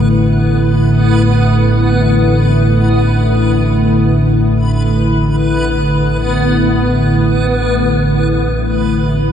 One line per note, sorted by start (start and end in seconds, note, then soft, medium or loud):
0.00 9.32 A1 medium
0.00 9.32 A2 medium
0.00 9.32 D3 medium
0.00 9.32 A3 medium
0.00 9.32 B3 medium
0.00 9.32 E4 medium
0.00 9.32 B4 medium